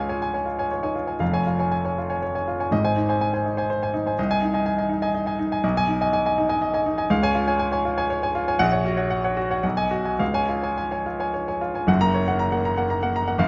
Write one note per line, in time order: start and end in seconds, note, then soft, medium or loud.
0.00 1.17 C#2 medium
0.00 0.17 F4 medium
0.00 0.09 C#5 soft
0.00 1.20 F5 medium
0.00 0.09 G#5 medium
0.09 0.20 C#5 medium
0.09 0.20 G#5 medium
0.22 0.33 G#5 medium
0.34 0.45 C#5 soft
0.34 0.45 G#5 medium
0.46 0.66 F4 medium
0.59 0.70 C#5 medium
0.59 0.70 G#5 medium
0.71 0.81 C#5 medium
0.83 0.95 D#4 soft
0.83 0.94 C#5 medium
0.83 0.94 G#5 medium
0.95 1.15 F4 medium
1.07 1.19 C#5 soft
1.07 1.19 G#5 soft
1.19 2.67 F1 medium
1.19 2.68 F2 medium
1.19 1.41 F5 medium
1.33 1.45 C#5 soft
1.33 1.45 G#5 medium
1.47 1.67 F4 medium
1.59 1.71 C#5 medium
1.59 1.70 G#5 medium
1.72 1.84 G#5 medium
1.85 1.96 C#5 medium
1.85 1.97 G#5 medium
1.98 2.18 F4 medium
2.10 2.21 C#5 medium
2.10 2.21 G#5 medium
2.22 2.33 C#5 medium
2.35 2.46 C#5 soft
2.35 2.46 G#5 medium
2.48 2.67 F4 medium
2.60 2.71 C#5 soft
2.60 2.71 G#5 medium
2.71 4.13 G#1 medium
2.71 4.14 G#2 medium
2.71 2.92 D#5 medium
2.84 2.95 C5 medium
2.84 2.96 G#5 medium
2.97 3.16 D#4 medium
3.09 3.20 C5 medium
3.09 3.20 G#5 medium
3.21 3.32 G#5 medium
3.34 3.44 C5 soft
3.34 3.44 G#5 medium
3.46 3.65 D#4 medium
3.57 3.68 C5 medium
3.57 3.69 G#5 medium
3.70 3.81 C5 medium
3.83 3.93 C5 soft
3.83 3.93 G#5 medium
3.94 4.13 D#4 medium
4.06 4.17 C5 medium
4.06 4.17 G#5 medium
4.19 5.60 C2 medium
4.19 4.29 D#5 medium
4.30 4.41 D#5 medium
4.30 4.41 G#5 medium
4.42 4.61 D#4 medium
4.54 4.65 D#5 medium
4.54 4.64 G#5 medium
4.66 4.77 G#5 medium
4.78 4.89 D#5 medium
4.78 4.89 G#5 medium
4.89 5.09 D#4 medium
5.02 5.13 D#5 medium
5.02 5.13 G#5 medium
5.14 5.25 D#5 medium
5.26 5.37 D#5 medium
5.26 5.38 G#5 medium
5.39 5.58 D#4 medium
5.52 5.62 D#5 medium
5.52 5.63 G#5 medium
5.64 7.07 B1 medium
5.64 5.75 D#5 medium
5.77 5.87 D#5 medium
5.77 5.87 G#5 medium
5.88 6.07 D#4 medium
6.01 6.11 D#5 medium
6.01 6.12 G#5 medium
6.13 6.25 G#5 medium
6.26 6.36 D#5 medium
6.26 6.36 G#5 medium
6.38 6.57 D#4 medium
6.49 6.60 D#5 medium
6.49 6.60 G#5 medium
6.62 6.72 D#5 medium
6.74 6.85 D#5 medium
6.74 6.85 G#5 medium
6.86 7.06 D#4 medium
6.98 7.09 D#5 medium
6.98 7.09 G#5 medium
7.10 8.56 C#2 medium
7.10 7.30 F5 medium
7.23 7.34 C#5 medium
7.23 7.34 G#5 medium
7.35 7.55 F4 medium
7.47 7.59 C#5 medium
7.47 7.58 G#5 medium
7.59 7.71 G#5 medium
7.72 7.83 C#5 medium
7.72 7.84 G#5 medium
7.85 8.05 F4 medium
7.97 8.09 C#5 medium
7.97 8.09 G#5 medium
8.10 8.21 C#5 medium
8.23 8.34 C#5 medium
8.23 8.34 G#5 medium
8.35 8.55 F4 medium
8.48 8.59 C#5 medium
8.48 8.59 G#5 medium
8.59 9.61 A#1 medium
8.59 8.71 F#5 loud
8.72 8.84 C#5 medium
8.72 8.84 F#5 medium
8.85 9.06 F#4 medium
8.97 9.09 C#5 medium
8.97 9.09 F#5 medium
9.10 9.23 F#5 medium
9.24 9.36 C#5 medium
9.24 9.36 F#5 medium
9.37 9.58 F#4 medium
9.50 9.63 C#5 medium
9.50 9.62 F#5 medium
9.63 10.18 B1 medium
9.63 9.86 F#5 medium
9.77 9.90 D#5 medium
9.77 9.90 G#5 medium
9.91 10.14 F#4 medium
10.05 10.18 D#5 medium
10.05 10.19 G#5 medium
10.19 11.84 C#2 medium
10.19 10.43 F5 medium
10.34 10.47 C#5 medium
10.34 10.47 G#5 medium
10.49 10.72 F4 medium
10.63 10.76 C#5 medium
10.63 10.76 G#5 medium
10.78 10.90 G#5 medium
10.91 11.04 C#5 medium
10.91 11.05 G#5 medium
11.06 11.29 F4 medium
11.20 11.32 C#5 medium
11.20 11.33 G#5 medium
11.34 11.46 C#5 medium
11.48 11.60 C#5 soft
11.48 11.60 G#5 medium
11.61 11.83 F4 medium
11.74 11.87 C#5 soft
11.74 11.87 G#5 medium
11.87 13.34 F#1 medium
11.87 13.35 F#2 medium
11.87 12.09 F#5 medium
12.01 12.22 A#3 medium
12.01 12.22 A#5 medium
12.14 12.35 C#5 medium
12.28 12.48 A#3 medium
12.28 12.48 F#5 medium
12.39 12.60 A#5 medium
12.52 12.72 A#3 medium
12.52 12.72 F#5 medium
12.65 12.85 A#5 medium
12.77 12.97 A#3 medium
12.77 12.97 F#5 medium
12.90 13.10 A#5 medium
13.03 13.22 A#3 medium
13.03 13.22 F#5 medium
13.16 13.35 A#5 medium
13.28 13.39 A#3 medium
13.28 13.39 F#5 medium
13.38 13.48 F#1 medium
13.38 13.48 F#2 medium
13.38 13.48 F5 medium